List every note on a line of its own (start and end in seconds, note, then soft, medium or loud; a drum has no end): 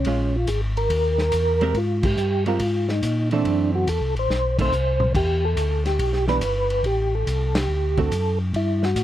0.00 0.37 C#4 medium
0.05 0.47 A#1 medium
0.05 0.32 G#3 medium
0.05 0.33 C#4 medium
0.05 0.33 F4 medium
0.05 kick soft
0.05 ride medium
0.36 0.49 F4 medium
0.47 0.89 G#1 medium
0.47 0.61 G#4 medium
0.47 kick soft
0.47 hi-hat pedal medium
0.47 ride medium
0.77 1.21 A#4 loud
0.77 ride soft
0.90 1.31 D#2 medium
0.90 kick soft
0.90 ride medium
1.18 1.79 A#4 loud
1.18 snare soft
1.32 1.74 E2 medium
1.32 kick soft
1.32 hi-hat pedal soft
1.32 ride medium
1.61 1.74 G#3 medium
1.61 1.75 C4 medium
1.61 1.75 G4 medium
1.61 1.75 A#4 medium
1.61 ride soft
1.74 2.16 G#2 medium
1.74 2.06 F4 medium
1.74 kick soft
1.74 ride medium
2.03 2.44 G4 loud
2.03 kick medium
2.03 crash medium
2.17 2.59 G2 medium
2.17 hi-hat pedal medium
2.46 2.59 G#3 medium
2.46 2.60 C4 medium
2.46 2.91 F4 medium
2.46 2.59 G4 medium
2.46 2.60 A#4 medium
2.46 ride soft
2.60 3.01 G#2 medium
2.60 kick soft
2.60 ride medium
2.89 3.29 D#4 medium
2.89 snare soft
3.02 3.44 A#2 medium
3.02 kick soft
3.02 hi-hat pedal medium
3.02 ride medium
3.31 3.85 E3 medium
3.31 3.86 A3 medium
3.31 3.86 C4 medium
3.31 3.71 D4 loud
3.31 ride soft
3.44 3.86 F#2 medium
3.44 kick soft
3.44 ride medium
3.75 3.89 F#4 medium
3.87 4.01 E2 medium
3.87 4.15 A4 medium
3.87 kick soft
3.87 hi-hat pedal soft
3.87 ride medium
4.00 4.15 C2 soft
4.15 4.28 A1 medium
4.15 ride soft
4.19 4.57 C5 loud
4.28 4.70 B1 medium
4.28 snare soft
4.59 4.72 D#3 medium
4.59 4.72 A3 medium
4.59 4.72 C4 medium
4.59 5.13 C5 loud
4.59 kick medium
4.59 crash medium
4.72 5.13 C2 medium
4.72 hi-hat pedal soft
5.00 mid tom medium
5.14 5.56 E2 medium
5.14 5.45 G4 medium
5.14 kick medium
5.14 crash medium
5.45 5.84 A4 medium
5.57 5.98 D2 medium
5.57 kick soft
5.57 hi-hat pedal medium
5.57 ride medium
5.86 6.26 G4 loud
5.86 snare soft
5.86 ride soft
5.99 6.41 B1 medium
5.99 kick soft
5.99 ride medium
6.13 snare soft
6.28 6.41 E3 medium
6.28 6.41 B3 medium
6.28 6.41 D4 medium
6.28 6.41 G4 medium
6.28 6.87 B4 loud
6.28 snare soft
6.41 6.83 G1 medium
6.41 kick soft
6.41 hi-hat pedal medium
6.41 ride medium
6.70 ride soft
6.83 7.25 A1 medium
6.83 7.15 G4 loud
6.83 kick soft
6.83 ride medium
7.15 7.58 A4 medium
7.26 7.68 C2 medium
7.26 kick soft
7.26 hi-hat pedal medium
7.26 ride medium
7.55 8.00 G4 medium
7.55 snare medium
7.55 ride medium
7.68 8.10 D2 medium
7.97 8.11 D3 medium
7.97 8.11 A3 medium
7.97 8.11 C4 medium
7.97 8.11 F#4 medium
7.97 8.38 A4 loud
7.97 kick soft
7.97 ride soft
8.11 8.53 F#2 loud
8.11 kick soft
8.11 hi-hat pedal soft
8.11 ride medium
8.53 8.95 G2 loud
8.53 8.85 E4 medium
8.53 kick soft
8.53 ride medium
8.83 9.04 F#4 medium
8.83 snare soft
8.96 9.04 A2 loud
8.96 kick soft
8.96 hi-hat pedal medium
8.96 ride medium